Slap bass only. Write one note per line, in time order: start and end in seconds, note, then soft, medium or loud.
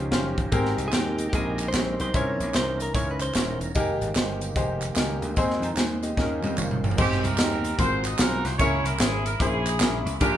0.11 0.34 F#1 medium
0.38 0.50 G1 medium
0.52 0.74 G#1 loud
0.78 0.90 C2 medium
0.92 1.27 D#2 medium
1.33 1.67 A#1 medium
1.73 1.95 A#1 medium
2.00 2.12 B1 medium
2.14 2.36 C2 medium
2.40 2.52 A#1 medium
2.54 2.89 C2 medium
2.95 3.29 C#2 loud
3.35 3.57 D#1 medium
3.60 3.73 E1 medium
3.76 3.98 F1 medium
4.01 4.14 G#1 medium
4.15 4.50 G1 medium
4.55 4.90 F1 medium
4.96 5.18 C#2 medium
5.22 5.34 D2 medium
5.37 5.59 D#2 medium
5.62 5.75 F2 medium
5.76 6.11 D#2 medium
6.17 6.39 D#2 loud
6.43 6.56 F2 medium
6.58 6.80 F#1 medium
6.83 6.96 G1 medium
6.98 7.20 G#1 loud
7.24 7.36 C2 medium
7.39 7.73 D#2 medium
7.78 8.13 G#1 loud
8.19 8.41 B1 medium
8.44 8.57 C2 medium
8.59 8.81 C#2 loud
8.85 8.98 C2 medium
9.00 9.34 G#1 medium
9.40 9.74 A#1 loud
9.80 10.02 A#1 medium
10.05 10.18 C#2 medium
10.21 10.37 A#1 loud